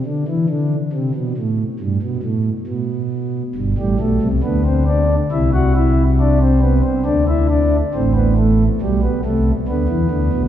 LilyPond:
\new Staff \with { instrumentName = "Pipe organ" } { \clef bass \time 4/4 \key g \major \tempo 4 = 69 << { d16 e16 d8 c16 b,16 a,8 g,16 b,16 a,8 b,4 | r16 g16 a8 b16 c'16 d'8 e'16 fis'16 e'8 d'16 c'16 b16 c'16 | d'16 e'16 d'8 c'16 b16 a8 g16 b16 a8 b4 | } \\ { r1 | <g,, g,>16 <a,, a,>16 <b,, b,>16 <c, c>16 <d, d>4 <c, c>2 | <d, d>4 <a,, a,>4 <b,, b,>8 <c, c>8 <d, d>16 <e, e>16 <d, d>16 <b,, b,>16 | } >> }